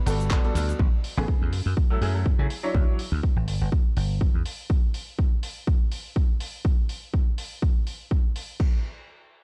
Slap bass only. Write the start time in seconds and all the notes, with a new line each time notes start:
0.06 G1
0.55 D2
0.79 A1
1.17 A1
1.42 E2
1.53 F#2
1.66 F#2
2.01 F#2
2.39 C#3
2.75 D2
3.12 D2
3.36 A1
3.48 G1
3.61 G1
3.96 G1
4.34 E2